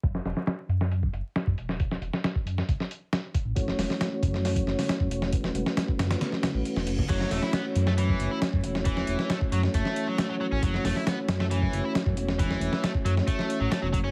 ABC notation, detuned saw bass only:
X:1
M:4/4
L:1/16
Q:1/4=136
K:F#m
V:1 name="Detuned saw bass" clef=bass
F,,, z E,,, z3 F,,4 F,,, z2 F,, E,,,2- | E,,,2 E,,, z3 F,, z F,,, z6 A,,, | F,,, z E,,, z3 F,,4 F,,, z2 F,, E,,,2- | E,,,2 E,,, z3 F,, z4 A,,, z E,,, F,,, z |
F,,, z E,,, z3 F,,4 F,,, z2 F,, E,,,2- | E,,,2 E,,, z3 F,, z F,,, z6 A,,, | F,,, z E,,, z3 F,,4 F,,, z2 F,, E,,,2- | E,,,2 E,,, z3 F,, z4 A,,, z E,,, F,,, z |]